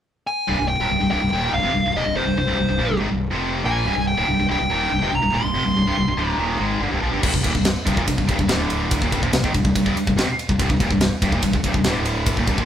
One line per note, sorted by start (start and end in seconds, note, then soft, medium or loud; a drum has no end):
0.27 0.68 G#5 medium
0.48 0.58 C1 medium
0.48 0.57 C2 medium
0.48 0.58 G2 medium
0.59 0.78 C1 medium
0.59 0.76 C2 medium
0.59 0.76 G2 medium
0.68 1.10 G5 medium
0.79 0.89 D#1 medium
0.79 0.90 D#2 medium
0.79 0.91 A#2 medium
0.90 1.00 C1 medium
0.90 0.99 C2 medium
0.90 1.00 G2 medium
1.01 1.10 C1 medium
1.01 1.09 C2 medium
1.01 1.11 G2 medium
1.11 1.21 C1 medium
1.11 1.20 C2 medium
1.11 1.21 G2 medium
1.11 1.53 G5 medium
1.22 1.32 C1 medium
1.22 1.32 C2 medium
1.22 1.33 G2 medium
1.32 1.52 D#1 medium
1.32 1.53 D#2 medium
1.32 1.53 A#2 medium
1.32 1.54 D#3 medium
1.53 1.62 C1 medium
1.53 1.63 C2 soft
1.53 1.64 G2 medium
1.53 1.97 F5 medium
1.63 1.74 F1 medium
1.63 1.73 F2 medium
1.63 1.74 C3 medium
1.74 1.84 C1 medium
1.74 1.84 C2 soft
1.74 1.85 G2 medium
1.85 1.94 C1 medium
1.85 1.95 C2 medium
1.85 1.96 G2 medium
1.95 2.05 D#1 medium
1.95 2.06 D#2 medium
1.95 2.06 A#2 medium
1.95 2.16 D#5 medium
2.06 2.15 C1 medium
2.06 2.15 C2 soft
2.06 2.16 G2 medium
2.15 2.25 F1 medium
2.15 2.26 F2 medium
2.15 2.25 C3 medium
2.15 2.36 C5 medium
2.25 2.35 C1 medium
2.25 2.36 C2 medium
2.25 2.36 G2 medium
2.36 2.47 C1 medium
2.36 2.46 C2 medium
2.36 2.47 G2 medium
2.36 2.98 C5 medium
2.47 2.57 C1 medium
2.47 2.57 C2 medium
2.47 2.58 G2 medium
2.58 2.68 C1 medium
2.58 2.68 C2 medium
2.58 2.68 G2 medium
2.69 2.79 C1 medium
2.69 2.78 C2 medium
2.69 2.80 G2 medium
2.79 2.90 A#1 medium
2.79 2.90 A#2 medium
2.79 2.90 F3 medium
2.90 3.00 C1 medium
2.90 3.00 C2 medium
2.90 3.00 G2 medium
3.00 3.11 G#1 medium
3.00 3.10 G#2 medium
3.00 3.10 D#3 medium
3.11 3.32 C1 medium
3.11 3.28 C2 medium
3.11 3.28 G2 medium
3.31 3.63 F1 medium
3.31 3.63 F2 medium
3.31 3.64 C3 medium
3.31 3.63 F3 medium
3.64 3.84 A#1 medium
3.64 3.85 A#2 medium
3.64 3.85 F3 medium
3.64 3.85 A#3 medium
3.64 4.07 G#5 medium
3.85 3.95 C1 medium
3.85 3.95 C2 medium
3.85 3.95 G2 loud
3.95 4.15 C1 medium
3.95 4.13 C2 medium
3.95 4.13 G2 medium
4.07 4.46 G5 medium
4.17 4.27 D#1 medium
4.17 4.27 D#2 medium
4.17 4.28 A#2 medium
4.28 4.38 C1 medium
4.28 4.38 C2 medium
4.28 4.38 G2 medium
4.39 4.49 C1 medium
4.39 4.47 C2 medium
4.39 4.49 G2 medium
4.48 4.59 C1 medium
4.48 4.58 C2 medium
4.48 4.59 G2 medium
4.48 5.15 G5 medium
4.60 4.70 C1 medium
4.60 4.69 C2 medium
4.60 4.69 G2 medium
4.70 4.90 D#1 medium
4.70 4.90 D#2 medium
4.70 4.90 A#2 medium
4.70 4.91 D#3 loud
4.91 5.02 C1 medium
4.91 5.01 C2 medium
4.91 5.02 G2 medium
5.01 5.12 F1 medium
5.01 5.12 F2 medium
5.01 5.12 C3 medium
5.12 5.22 C1 medium
5.12 5.21 C2 medium
5.12 5.21 G2 medium
5.12 5.35 A#5 medium
5.22 5.33 C1 medium
5.22 5.32 C2 medium
5.22 5.33 G2 medium
5.33 5.43 D#1 medium
5.33 5.43 D#2 medium
5.33 5.43 A#2 medium
5.33 6.30 C6 medium
5.43 5.54 C1 medium
5.43 5.54 C2 medium
5.43 5.54 G2 medium
5.54 5.64 F1 medium
5.54 5.64 F2 medium
5.54 5.65 C3 medium
5.65 5.75 C1 medium
5.65 5.75 C2 medium
5.65 5.76 G2 medium
5.76 5.85 C1 medium
5.76 5.86 C2 medium
5.76 5.86 G2 medium
5.86 5.96 C1 medium
5.86 5.96 C2 medium
5.86 5.96 G2 loud
5.97 6.06 C1 medium
5.97 6.06 C2 medium
5.97 6.07 G2 medium
6.07 6.16 C1 medium
6.07 6.17 C2 medium
6.07 6.17 G2 medium
6.17 6.37 D1 medium
6.17 6.38 D2 medium
6.17 6.38 A2 medium
6.17 6.38 D3 loud
6.30 6.78 A#5 medium
6.38 6.58 D#1 medium
6.38 6.59 D#2 medium
6.38 6.59 A#2 medium
6.38 6.59 D#3 medium
6.60 6.79 G#1 medium
6.60 6.80 G#2 medium
6.60 6.80 D#3 medium
6.60 6.81 G#3 loud
6.80 6.90 G1 medium
6.80 6.90 G2 medium
6.80 6.91 D3 medium
6.91 7.01 C1 medium
6.91 7.01 C2 medium
6.91 7.01 G2 medium
7.01 7.12 A#1 medium
7.01 7.10 A#2 medium
7.01 7.11 F3 medium
7.11 7.22 G1 medium
7.11 7.21 G2 medium
7.11 7.22 D3 medium
7.22 7.33 C1 medium
7.22 7.32 C2 medium
7.22 7.33 G2 loud
7.22 kick loud
7.22 crash loud
7.33 7.43 C1 medium
7.33 7.43 C2 medium
7.33 7.44 G2 medium
7.33 kick medium
7.43 7.54 D#1 medium
7.43 7.53 D#2 medium
7.43 7.54 A#2 loud
7.43 kick medium
7.43 ride medium
7.54 7.74 C1 medium
7.54 7.71 C2 medium
7.54 7.71 G2 medium
7.54 kick medium
7.65 snare loud
7.65 ride loud
7.86 7.96 C1 medium
7.86 7.96 C2 medium
7.86 7.96 G2 loud
7.86 kick loud
7.86 ride medium
7.97 8.06 D#1 medium
7.97 8.06 D#2 medium
7.97 8.07 A#2 medium
7.97 kick medium
8.07 8.17 C1 medium
8.07 8.17 C2 medium
8.07 8.17 G2 medium
8.07 kick medium
8.07 ride loud
8.18 8.27 C1 medium
8.18 8.26 C2 medium
8.18 8.27 G2 medium
8.18 kick medium
8.27 8.38 C1 medium
8.27 8.37 C2 medium
8.27 8.38 G2 loud
8.27 kick medium
8.27 ride medium
8.38 8.47 C1 medium
8.38 8.47 C2 medium
8.38 8.48 G2 medium
8.38 kick medium
8.47 8.97 D1 medium
8.47 9.00 D2 medium
8.47 9.01 A2 medium
8.47 9.01 D3 loud
8.47 snare loud
8.47 ride loud
8.70 ride medium
8.91 kick loud
8.91 ride loud
9.01 9.11 D#1 medium
9.01 9.11 D#2 medium
9.01 9.12 A#2 medium
9.01 kick medium
9.12 9.22 C1 medium
9.12 9.22 C2 loud
9.12 9.22 G2 loud
9.12 kick medium
9.12 ride medium
9.23 9.31 A#1 medium
9.23 9.32 A#2 medium
9.23 9.32 F3 medium
9.23 kick medium
9.32 9.42 C1 medium
9.32 9.43 C2 medium
9.32 9.43 G2 medium
9.32 snare loud
9.32 ride loud
9.43 9.53 G#1 medium
9.43 9.53 G#2 medium
9.43 9.53 D#3 loud
9.43 kick loud
9.54 9.64 C1 medium
9.54 9.63 C2 medium
9.54 9.64 G2 medium
9.54 kick medium
9.54 ride medium
9.64 9.74 C1 medium
9.64 9.74 C2 medium
9.64 9.74 G2 medium
9.64 kick medium
9.75 9.85 C1 medium
9.75 9.84 C2 medium
9.75 9.85 G2 medium
9.75 kick medium
9.75 ride loud
9.85 9.95 C1 medium
9.85 9.95 C2 medium
9.85 9.96 G2 loud
9.85 kick medium
9.95 muted fingered electric bass stroke soft
9.95 muted distorted electric guitar stroke medium
9.95 ride medium
10.07 10.15 C1 medium
10.07 10.17 C2 medium
10.07 10.18 G2 medium
10.07 kick medium
10.16 10.26 F1 medium
10.16 10.27 F2 medium
10.16 10.28 C3 loud
10.16 snare loud
10.16 ride medium
10.27 muted fingered electric bass stroke soft
10.27 muted distorted electric guitar stroke medium
10.39 ride medium
10.49 10.58 C1 medium
10.49 10.58 C2 medium
10.49 10.60 G2 medium
10.49 kick medium
10.59 10.69 C1 medium
10.59 10.69 C2 medium
10.59 10.70 G2 loud
10.59 kick loud
10.59 ride medium
10.69 10.79 C1 medium
10.69 10.80 C2 medium
10.69 10.81 G2 medium
10.69 kick medium
10.80 10.90 D#1 medium
10.80 10.90 D#2 medium
10.80 10.91 A#2 loud
10.80 kick medium
10.80 ride medium
10.91 11.10 C1 medium
10.91 11.08 C2 medium
10.91 11.08 G2 medium
10.91 kick medium
11.01 snare loud
11.01 ride loud
11.22 11.31 C1 medium
11.22 11.32 C2 medium
11.22 11.32 G2 loud
11.22 kick loud
11.22 ride medium
11.32 11.42 D#1 medium
11.32 11.43 D#2 medium
11.32 11.43 A#2 loud
11.32 kick medium
11.43 11.53 C1 medium
11.43 11.53 C2 medium
11.43 11.54 G2 medium
11.43 kick medium
11.43 ride loud
11.53 11.63 C1 medium
11.53 11.64 C2 medium
11.53 11.65 G2 medium
11.53 kick medium
11.64 11.74 C1 medium
11.64 11.74 C2 medium
11.64 11.74 G2 loud
11.64 kick medium
11.64 ride medium
11.74 11.84 C1 medium
11.74 11.85 C2 medium
11.74 11.85 G2 medium
11.74 kick medium
11.84 12.34 D1 medium
11.84 12.37 D2 medium
11.84 12.37 A2 medium
11.84 12.38 D3 medium
11.84 snare loud
11.84 ride loud
12.05 ride medium
12.26 kick loud
12.26 ride loud
12.37 12.47 D#1 medium
12.37 12.47 D#2 medium
12.37 12.48 A#2 medium
12.37 kick medium
12.47 12.57 C1 medium
12.47 12.58 C2 loud
12.47 12.58 G2 loud
12.47 kick medium
12.47 ride medium
12.58 12.65 A#1 medium
12.58 12.65 A#2 medium
12.58 12.65 F3 loud
12.58 kick medium